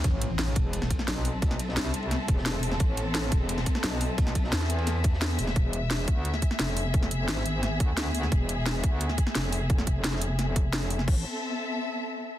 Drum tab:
CC |----------------|----------------|----------------|----------------|
RD |x-x-x-x-x-x-x-x-|x-x-xxxxx-x-x-x-|x-x-x-x-x-x-x-x-|x-x-xxxxx-x-x-x-|
HH |x-x-x-x-x-x-x-o-|x-x-x-x-x-x-x-o-|x-x-x-x-x-x-x-o-|x-x-x-x-x-x-x-o-|
SD |----o----o-oo---|-o-ooo--o--oo--o|----o----o-oo---|-o-ooo--o--oo--o|
BD |o-----o---o-----|o---------o-----|o-----o---o-----|o-o-------o-----|

CC |----------------|----------------|----------------|----------------|
RD |----------------|----------------|----------------|----------------|
HH |x-x-x-x-x-x-x-o-|x-x-x-x-x-x-x-o-|x-x-x-x-x-x-x-o-|x-x-x-x-x-x-x-o-|
SD |----o----o-oo---|-o--oo--o---o--o|----o----o-oo---|-o--oo--o---o--o|
BD |o-----o---o-----|o---------o-----|o-----o---o-----|o-o-------o-----|

CC |x---------------|
RD |----------------|
HH |----------------|
SD |----------------|
BD |o---------------|